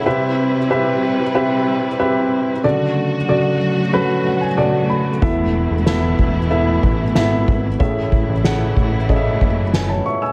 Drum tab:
SD |--------|--------|--o---o-|--o---o-|
BD |--------|--------|o--o-o-o|oo-ooo--|